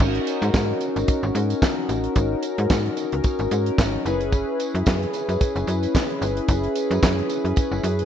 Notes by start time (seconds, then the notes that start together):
0.00 G#1 C#4 D#4 F#4 A#4, kick, crash, tambourine
0.15 closed hi-hat
0.27 closed hi-hat, tambourine
0.42 G#2, closed hi-hat, tambourine
0.54 G#2, kick, snare, clap, tambourine
0.81 closed hi-hat, tambourine
0.96 G#1, closed hi-hat, tambourine
1.08 kick, closed hi-hat, tambourine
1.23 G#1, tambourine
1.35 G#2, closed hi-hat, tambourine
1.50 closed hi-hat, tambourine
1.62 kick, snare, clap, tambourine
1.89 A1, closed hi-hat, tambourine
2.04 closed hi-hat
2.16 G#1, kick, closed hi-hat, tambourine
2.43 closed hi-hat, tambourine
2.58 G#2, closed hi-hat
2.70 G#2, kick, snare, clap, tambourine
2.86 closed hi-hat
2.97 closed hi-hat, tambourine
3.12 C#2, closed hi-hat
3.24 kick, closed hi-hat, tambourine
3.39 G#1, closed hi-hat, tambourine
3.51 G#2, closed hi-hat, tambourine
3.66 closed hi-hat
3.78 G#1, kick, snare, clap, tambourine
4.05 F#1 C#4 E4 G#4 B4, closed hi-hat, tambourine
4.21 closed hi-hat
4.32 kick, closed hi-hat, tambourine
4.60 closed hi-hat, tambourine
4.75 F#2, closed hi-hat
4.86 F#2, kick, snare, clap, tambourine
5.03 closed hi-hat
5.13 closed hi-hat, tambourine
5.29 F#2, closed hi-hat, tambourine
5.41 kick, closed hi-hat, tambourine
5.56 F#1, closed hi-hat, tambourine
5.67 F#2, closed hi-hat, tambourine
5.83 closed hi-hat, tambourine
5.95 kick, snare, clap, tambourine
6.10 closed hi-hat
6.22 G1, closed hi-hat, tambourine
6.37 closed hi-hat
6.48 F#1, kick, closed hi-hat, tambourine
6.64 closed hi-hat
6.75 closed hi-hat, tambourine
6.91 F#2, closed hi-hat, tambourine
7.02 F#2, kick, snare, clap, tambourine
7.19 closed hi-hat
7.29 closed hi-hat, tambourine
7.45 F#2, closed hi-hat
7.56 kick, closed hi-hat, tambourine
7.72 F#1, tambourine
7.83 F#2, closed hi-hat, tambourine
7.99 closed hi-hat